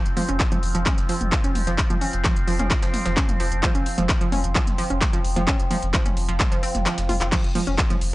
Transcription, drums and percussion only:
0.06 closed hi-hat medium
0.17 closed hi-hat medium
0.17 mid tom medium
0.17 open hi-hat loud
0.29 closed hi-hat medium
0.40 kick loud
0.40 snare loud
0.40 clap loud
0.40 closed hi-hat medium
0.52 closed hi-hat medium
0.52 mid tom medium
0.63 closed hi-hat medium
0.63 open hi-hat medium
0.75 closed hi-hat medium
0.86 kick loud
0.86 clap loud
0.86 closed hi-hat medium
0.86 mid tom medium
0.98 snare soft
0.98 closed hi-hat medium
1.09 closed hi-hat medium
1.09 open hi-hat loud
1.21 closed hi-hat medium
1.21 mid tom medium
1.32 kick loud
1.32 snare loud
1.32 clap loud
1.32 closed hi-hat medium
1.44 closed hi-hat medium
1.55 closed hi-hat medium
1.55 mid tom medium
1.55 open hi-hat medium
1.67 closed hi-hat medium
1.67 closed hi-hat soft
1.78 kick loud
1.78 clap loud
1.78 closed hi-hat medium
1.90 closed hi-hat medium
1.90 mid tom medium
2.01 closed hi-hat medium
2.01 open hi-hat loud
2.13 snare soft
2.13 closed hi-hat medium
2.24 kick loud
2.24 snare loud
2.24 clap loud
2.24 closed hi-hat medium
2.24 mid tom medium
2.36 closed hi-hat medium
2.48 closed hi-hat medium
2.48 open hi-hat medium
2.59 snare medium
2.59 closed hi-hat medium
2.59 mid tom medium
2.71 kick loud
2.71 snare loud
2.71 clap loud
2.71 closed hi-hat medium
2.82 snare loud
2.82 closed hi-hat medium
2.94 snare loud
2.94 closed hi-hat medium
2.94 mid tom medium
2.94 open hi-hat loud
3.06 snare loud
3.06 closed hi-hat medium
3.17 kick loud
3.17 snare loud
3.17 clap loud
3.17 closed hi-hat medium
3.29 closed hi-hat medium
3.29 mid tom medium
3.40 snare medium
3.40 closed hi-hat medium
3.40 open hi-hat medium
3.52 closed hi-hat medium
3.63 kick loud
3.63 clap loud
3.63 closed hi-hat medium
3.63 mid tom medium
3.75 closed hi-hat medium
3.86 closed hi-hat medium
3.86 open hi-hat loud
3.98 closed hi-hat medium
3.98 mid tom medium
4.09 kick loud
4.09 snare loud
4.09 clap loud
4.09 closed hi-hat medium
4.21 closed hi-hat medium
4.32 closed hi-hat medium
4.32 mid tom medium
4.32 open hi-hat medium
4.44 closed hi-hat medium
4.55 kick loud
4.55 clap loud
4.55 closed hi-hat medium
4.67 snare soft
4.67 closed hi-hat medium
4.67 mid tom medium
4.78 closed hi-hat medium
4.78 open hi-hat loud
4.90 closed hi-hat medium
5.01 kick loud
5.01 snare loud
5.01 clap loud
5.01 closed hi-hat medium
5.01 mid tom medium
5.13 closed hi-hat medium
5.24 closed hi-hat medium
5.24 open hi-hat medium
5.36 closed hi-hat soft
5.36 closed hi-hat medium
5.36 mid tom medium
5.48 kick loud
5.48 clap loud
5.48 closed hi-hat medium
5.59 closed hi-hat medium
5.71 closed hi-hat medium
5.71 mid tom medium
5.71 open hi-hat loud
5.82 snare soft
5.82 closed hi-hat medium
5.94 kick loud
5.94 snare loud
5.94 clap loud
5.94 closed hi-hat medium
6.06 closed hi-hat medium
6.06 mid tom medium
6.17 closed hi-hat medium
6.17 open hi-hat medium
6.29 snare medium
6.29 closed hi-hat medium
6.40 kick loud
6.40 clap loud
6.40 closed hi-hat medium
6.40 mid tom medium
6.52 snare soft
6.52 closed hi-hat medium
6.63 closed hi-hat medium
6.63 open hi-hat loud
6.75 snare soft
6.75 closed hi-hat medium
6.75 mid tom medium
6.86 snare loud
6.86 clap loud
6.86 closed hi-hat medium
6.98 snare loud
6.98 closed hi-hat medium
7.09 snare soft
7.09 closed hi-hat medium
7.09 mid tom medium
7.09 open hi-hat medium
7.21 clap medium
7.21 closed hi-hat medium
7.32 kick loud
7.32 clap loud
7.32 closed hi-hat medium
7.32 closed hi-hat loud
7.32 crash loud
7.44 closed hi-hat soft
7.55 closed hi-hat medium
7.55 mid tom medium
7.55 open hi-hat loud
7.67 closed hi-hat medium
7.78 kick loud
7.78 snare loud
7.78 clap loud
7.78 closed hi-hat medium
7.90 closed hi-hat medium
7.90 mid tom medium
8.01 closed hi-hat medium
8.01 open hi-hat loud

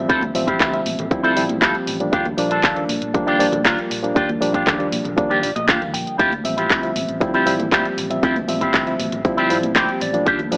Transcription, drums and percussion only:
0.10 kick loud
0.10 closed hi-hat medium
0.21 closed hi-hat soft
0.21 high conga loud
0.35 open hi-hat loud
0.48 kick medium
0.48 closed hi-hat medium
0.60 kick loud
0.60 clap loud
0.60 closed hi-hat soft
0.60 low conga loud
0.73 closed hi-hat soft
0.86 open hi-hat medium
0.86 high conga medium
0.99 closed hi-hat soft
0.99 low conga medium
1.11 kick loud
1.11 closed hi-hat soft
1.24 closed hi-hat soft
1.37 open hi-hat loud
1.49 closed hi-hat medium
1.49 high conga loud
1.62 kick loud
1.62 clap loud
1.62 closed hi-hat medium
1.75 closed hi-hat soft
1.87 open hi-hat medium
2.00 closed hi-hat medium
2.13 kick loud
2.13 closed hi-hat soft
2.25 closed hi-hat soft
2.25 high conga loud
2.38 open hi-hat loud
2.51 closed hi-hat medium
2.64 kick loud
2.64 clap loud
2.64 closed hi-hat soft
2.76 closed hi-hat soft
2.89 open hi-hat medium
2.89 high conga medium
3.02 closed hi-hat soft
3.14 kick loud
3.14 closed hi-hat soft
3.28 closed hi-hat soft
3.40 open hi-hat loud
3.52 closed hi-hat soft
3.52 high conga medium
3.52 low conga medium
3.65 kick loud
3.65 clap loud
3.65 closed hi-hat soft
3.79 closed hi-hat soft
3.91 open hi-hat medium
4.04 closed hi-hat soft
4.16 kick loud
4.16 closed hi-hat soft
4.29 closed hi-hat soft
4.29 high conga medium
4.42 open hi-hat loud
4.54 kick medium
4.54 closed hi-hat soft
4.66 kick loud
4.66 clap loud
4.66 closed hi-hat soft
4.66 low conga medium
4.80 closed hi-hat soft
4.92 open hi-hat loud
4.92 high conga medium
5.05 closed hi-hat soft
5.05 low conga medium
5.18 kick loud
5.18 closed hi-hat soft
5.31 closed hi-hat soft
5.43 open hi-hat loud
5.56 closed hi-hat soft
5.56 high conga loud
5.69 kick loud
5.69 clap loud
5.69 closed hi-hat medium
5.82 closed hi-hat soft
5.94 open hi-hat medium
6.07 closed hi-hat soft
6.19 kick loud
6.19 closed hi-hat soft
6.19 shaker soft
6.31 closed hi-hat soft
6.31 high conga medium
6.31 shaker soft
6.45 open hi-hat loud
6.45 shaker medium
6.58 closed hi-hat soft
6.58 shaker soft
6.70 kick loud
6.70 clap loud
6.70 closed hi-hat soft
6.70 shaker soft
6.83 closed hi-hat soft
6.83 shaker soft
6.96 open hi-hat medium
6.96 high conga medium
6.96 shaker medium
7.08 closed hi-hat soft
7.08 shaker soft
7.21 kick loud
7.21 closed hi-hat soft
7.21 shaker soft
7.34 closed hi-hat soft
7.34 shaker soft
7.46 open hi-hat loud
7.46 shaker medium
7.59 closed hi-hat soft
7.59 high conga loud
7.59 low conga medium
7.59 shaker soft
7.72 kick loud
7.72 clap loud
7.72 closed hi-hat medium
7.72 shaker soft
7.85 closed hi-hat soft
7.98 open hi-hat medium
7.98 shaker medium
8.10 closed hi-hat soft
8.10 shaker soft
8.23 kick loud
8.23 closed hi-hat medium
8.23 shaker medium
8.36 closed hi-hat soft
8.36 high conga medium
8.36 shaker soft
8.49 open hi-hat medium
8.49 shaker medium
8.61 kick medium
8.61 closed hi-hat medium
8.61 shaker soft
8.73 kick loud
8.73 clap loud
8.73 closed hi-hat soft
8.73 low conga medium
8.73 shaker soft
8.87 closed hi-hat soft
8.87 shaker soft
9.00 open hi-hat medium
9.00 high conga medium
9.00 shaker medium
9.12 closed hi-hat soft
9.12 low conga medium
9.12 shaker soft
9.25 kick loud
9.25 closed hi-hat soft
9.25 shaker soft
9.38 closed hi-hat soft
9.38 shaker soft
9.50 open hi-hat medium
9.50 shaker medium
9.63 closed hi-hat soft
9.63 high conga medium
9.63 shaker soft
9.76 kick loud
9.76 clap loud
9.76 closed hi-hat medium
9.76 shaker medium
9.89 closed hi-hat soft
10.01 open hi-hat medium
10.01 shaker medium
10.14 closed hi-hat medium
10.14 shaker soft
10.26 kick loud
10.26 closed hi-hat medium
10.26 shaker soft
10.39 closed hi-hat soft
10.39 high conga medium
10.39 shaker soft
10.52 open hi-hat loud
10.52 shaker loud

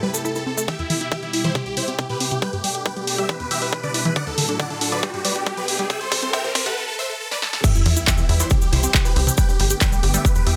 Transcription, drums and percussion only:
0.14 cabasa medium
0.25 cabasa medium
0.35 cabasa soft
0.58 cabasa medium
0.68 kick loud
0.68 closed hi-hat medium
0.79 closed hi-hat soft
0.90 open hi-hat loud
1.01 closed hi-hat medium
1.12 kick loud
1.12 closed hi-hat soft
1.23 closed hi-hat soft
1.33 open hi-hat loud
1.44 closed hi-hat soft
1.55 kick loud
1.55 closed hi-hat soft
1.66 closed hi-hat soft
1.77 open hi-hat loud
1.88 closed hi-hat soft
1.99 kick loud
1.99 closed hi-hat soft
2.10 closed hi-hat soft
2.20 open hi-hat loud
2.31 closed hi-hat medium
2.42 kick loud
2.42 closed hi-hat soft
2.53 closed hi-hat soft
2.64 open hi-hat loud
2.75 closed hi-hat medium
2.86 kick loud
2.86 closed hi-hat soft
2.97 closed hi-hat soft
3.07 open hi-hat loud
3.18 closed hi-hat medium
3.29 kick loud
3.29 closed hi-hat medium
3.40 closed hi-hat soft
3.51 open hi-hat loud
3.62 open hi-hat medium
3.73 kick loud
3.73 closed hi-hat soft
3.83 closed hi-hat soft
3.94 open hi-hat loud
4.05 closed hi-hat medium
4.16 kick loud
4.16 closed hi-hat soft
4.27 closed hi-hat soft
4.38 open hi-hat loud
4.49 closed hi-hat medium
4.60 kick loud
4.60 closed hi-hat soft
4.70 closed hi-hat soft
4.81 open hi-hat loud
4.92 closed hi-hat medium
5.03 kick loud
5.03 closed hi-hat medium
5.14 closed hi-hat soft
5.25 open hi-hat loud
5.36 closed hi-hat soft
5.46 kick loud
5.46 closed hi-hat soft
5.57 closed hi-hat soft
5.68 open hi-hat loud
5.79 closed hi-hat medium
5.90 kick loud
5.90 closed hi-hat soft
6.01 closed hi-hat soft
6.12 kick loud
6.12 open hi-hat loud
6.23 closed hi-hat medium
6.33 kick loud
6.33 closed hi-hat soft
6.44 closed hi-hat soft
6.55 kick loud
6.55 open hi-hat loud
6.66 closed hi-hat medium
7.31 snare medium
7.42 snare medium
7.53 snare medium
7.64 kick loud
7.64 closed hi-hat medium
7.64 crash loud
7.64 cabasa medium
7.75 closed hi-hat soft
7.75 cabasa soft
7.86 open hi-hat loud
7.96 closed hi-hat medium
7.96 cabasa medium
8.07 kick loud
8.07 clap loud
8.07 closed hi-hat medium
8.07 cabasa medium
8.18 closed hi-hat soft
8.18 cabasa soft
8.29 open hi-hat medium
8.40 closed hi-hat medium
8.40 cabasa medium
8.50 kick loud
8.50 closed hi-hat medium
8.50 cabasa medium
8.61 closed hi-hat soft
8.61 cabasa soft
8.73 open hi-hat loud
8.83 closed hi-hat medium
8.83 cabasa medium
8.94 kick loud
8.94 clap loud
8.94 closed hi-hat medium
8.94 cabasa medium
9.05 closed hi-hat soft
9.05 cabasa soft
9.16 open hi-hat medium
9.27 closed hi-hat medium
9.27 cabasa medium
9.37 kick loud
9.37 closed hi-hat medium
9.37 cabasa medium
9.49 closed hi-hat soft
9.49 cabasa soft
9.60 open hi-hat loud
9.70 closed hi-hat medium
9.70 cabasa medium
9.81 kick loud
9.81 clap loud
9.81 closed hi-hat medium
9.81 cabasa medium
9.92 closed hi-hat soft
9.92 cabasa soft
10.03 open hi-hat medium
10.14 closed hi-hat medium
10.14 cabasa medium
10.25 kick loud
10.25 closed hi-hat medium
10.25 cabasa medium
10.35 closed hi-hat soft
10.35 cabasa soft
10.47 open hi-hat loud

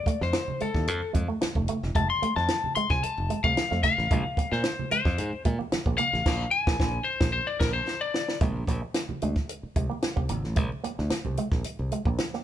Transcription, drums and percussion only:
0.06 kick loud
0.06 closed hi-hat medium
0.06 high conga medium
0.21 snare soft
0.33 snare loud
0.33 closed hi-hat medium
0.33 muted conga soft
0.48 muted conga soft
0.48 high conga medium
0.48 low conga medium
0.60 closed hi-hat medium
0.75 kick medium
0.75 snare soft
0.88 closed hi-hat medium
1.02 muted conga soft
1.15 kick medium
1.15 closed hi-hat medium
1.15 high conga medium
1.30 high conga medium
1.41 snare loud
1.41 closed hi-hat medium
1.41 high conga medium
1.55 kick medium
1.55 muted conga soft
1.68 closed hi-hat medium
1.68 low conga medium
1.83 snare soft
1.95 kick loud
1.95 closed hi-hat medium
1.95 muted conga soft
1.95 low conga medium
2.11 muted conga soft
2.23 closed hi-hat medium
2.23 high conga medium
2.37 snare soft
2.48 snare loud
2.48 closed hi-hat medium
2.48 muted conga soft
2.64 muted conga soft
2.64 high conga medium
2.64 low conga medium
2.76 closed hi-hat medium
2.90 kick medium
2.90 snare soft
3.03 closed hi-hat medium
3.03 muted conga soft
3.18 muted conga soft
3.30 closed hi-hat medium
3.30 high conga medium
3.44 kick loud
3.44 high conga medium
3.57 snare loud
3.57 closed hi-hat medium
3.57 muted conga soft
3.57 high conga medium
3.71 snare soft
3.71 muted conga soft
3.83 kick medium
3.83 snare soft
3.83 closed hi-hat medium
3.83 low conga medium
3.98 snare soft
4.11 kick loud
4.11 closed hi-hat medium
4.11 muted conga soft
4.11 low conga medium
4.37 kick medium
4.37 closed hi-hat medium
4.37 high conga medium
4.52 snare soft
4.64 snare loud
4.64 closed hi-hat loud
4.79 high conga medium
4.79 low conga medium
4.91 closed hi-hat medium
5.05 kick medium
5.05 snare soft
5.18 closed hi-hat medium
5.18 muted conga soft
5.33 muted conga soft
5.45 kick medium
5.45 closed hi-hat medium
5.45 high conga medium
5.61 high conga medium
5.72 snare loud
5.72 closed hi-hat medium
5.72 muted conga soft
5.72 high conga medium
5.86 kick medium
5.86 muted conga soft
5.98 closed hi-hat medium
5.98 low conga medium
6.13 snare soft
6.26 kick loud
6.26 snare loud
6.26 crash medium
6.67 kick loud
6.67 snare loud
6.80 kick loud
6.80 snare loud
7.21 kick loud
7.21 snare loud
7.60 kick loud
7.60 snare medium
7.60 crash medium
7.88 snare medium
8.14 snare loud
8.28 snare medium
8.41 kick loud
8.41 closed hi-hat medium
8.41 low conga medium
8.57 muted conga soft
8.67 kick medium
8.67 closed hi-hat medium
8.67 high conga medium
8.94 snare loud
8.94 closed hi-hat medium
9.09 muted conga soft
9.09 high conga medium
9.09 low conga medium
9.22 closed hi-hat medium
9.36 kick medium
9.36 snare soft
9.49 closed hi-hat loud
9.76 kick medium
9.76 closed hi-hat medium
9.76 high conga medium
9.91 high conga medium
10.02 snare loud
10.02 closed hi-hat medium
10.02 high conga medium
10.17 kick medium
10.29 closed hi-hat medium
10.29 low conga medium
10.44 snare soft
10.56 kick loud
10.56 closed hi-hat medium
10.56 muted conga soft
10.56 low conga medium
10.72 muted conga soft
10.84 closed hi-hat medium
10.84 high conga medium
10.98 snare soft
11.10 snare loud
11.10 closed hi-hat loud
11.25 muted conga soft
11.25 high conga medium
11.25 low conga medium
11.37 closed hi-hat medium
11.52 kick loud
11.52 snare soft
11.64 closed hi-hat medium
11.64 muted conga soft
11.79 muted conga soft
11.92 closed hi-hat medium
11.92 high conga medium
12.05 kick medium
12.05 high conga medium
12.18 snare loud
12.18 closed hi-hat medium
12.18 muted conga soft
12.18 high conga medium
12.33 snare soft
12.33 muted conga soft

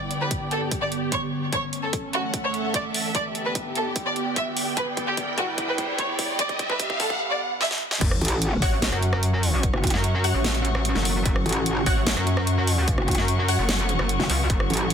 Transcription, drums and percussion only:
0.11 closed hi-hat medium
0.31 kick loud
0.31 closed hi-hat medium
0.51 closed hi-hat medium
0.71 kick medium
0.71 closed hi-hat medium
0.92 closed hi-hat medium
1.12 kick medium
1.12 closed hi-hat medium
1.53 kick loud
1.53 closed hi-hat medium
1.73 closed hi-hat medium
1.93 kick loud
1.93 closed hi-hat medium
2.13 closed hi-hat soft
2.34 kick loud
2.34 closed hi-hat medium
2.54 closed hi-hat soft
2.74 kick loud
2.74 closed hi-hat medium
2.94 open hi-hat medium
3.15 kick loud
3.15 closed hi-hat medium
3.35 closed hi-hat soft
3.55 kick loud
3.55 closed hi-hat medium
3.75 closed hi-hat soft
3.96 kick loud
3.96 closed hi-hat medium
4.16 closed hi-hat soft
4.36 kick loud
4.36 closed hi-hat medium
4.57 open hi-hat medium
4.77 kick loud
4.77 closed hi-hat medium
4.97 kick loud
4.97 closed hi-hat medium
5.17 kick loud
5.17 closed hi-hat medium
5.38 kick loud
5.38 closed hi-hat medium
5.58 kick loud
5.58 closed hi-hat medium
5.78 kick loud
5.78 closed hi-hat medium
5.99 kick loud
5.99 closed hi-hat medium
6.19 kick loud
6.19 open hi-hat loud
6.39 kick loud
6.39 closed hi-hat medium
6.49 kick medium
6.49 closed hi-hat soft
6.59 kick loud
6.59 closed hi-hat medium
6.69 kick medium
6.80 kick loud
6.80 closed hi-hat medium
6.90 kick loud
7.00 kick loud
7.00 open hi-hat medium
7.10 kick medium
7.61 snare medium
7.71 snare medium
7.91 snare medium
8.01 kick loud
8.01 closed hi-hat medium
8.01 crash loud
8.11 cross-stick medium
8.21 closed hi-hat soft
8.25 closed hi-hat medium
8.28 closed hi-hat medium
8.42 closed hi-hat medium
8.62 kick loud
8.62 open hi-hat medium
8.82 snare loud
8.82 closed hi-hat medium
8.92 cross-stick medium
8.92 closed hi-hat soft
9.03 closed hi-hat medium
9.13 cross-stick medium
9.23 closed hi-hat medium
9.43 open hi-hat loud
9.63 kick loud
9.63 closed hi-hat medium
9.74 cross-stick medium
9.84 kick loud
9.84 closed hi-hat medium
9.87 closed hi-hat medium
9.90 snare soft
9.90 closed hi-hat medium
10.04 closed hi-hat medium
10.24 open hi-hat medium
10.44 snare loud
10.44 closed hi-hat medium
10.55 closed hi-hat soft
10.65 closed hi-hat medium
10.75 cross-stick medium
10.85 closed hi-hat medium
10.95 snare soft
11.05 open hi-hat loud
11.26 kick loud
11.26 closed hi-hat medium
11.36 cross-stick medium
11.46 closed hi-hat medium
11.49 closed hi-hat medium
11.53 closed hi-hat medium
11.66 closed hi-hat medium
11.86 kick loud
11.86 open hi-hat medium
12.07 snare loud
12.07 closed hi-hat medium
12.17 cross-stick medium
12.17 closed hi-hat soft
12.27 closed hi-hat medium
12.37 cross-stick medium
12.47 closed hi-hat medium
12.67 open hi-hat medium
12.88 kick loud
12.88 closed hi-hat medium
12.98 cross-stick medium
13.08 kick loud
13.08 closed hi-hat medium
13.11 closed hi-hat medium
13.15 snare soft
13.15 closed hi-hat medium
13.28 closed hi-hat medium
13.48 open hi-hat medium
13.69 snare loud
13.69 closed hi-hat medium
13.79 closed hi-hat soft
13.89 closed hi-hat medium
13.99 cross-stick medium
14.09 closed hi-hat medium
14.20 snare soft
14.30 open hi-hat medium
14.50 kick loud
14.50 closed hi-hat medium
14.60 cross-stick medium
14.70 closed hi-hat soft
14.74 closed hi-hat medium
14.77 closed hi-hat medium
14.90 closed hi-hat medium

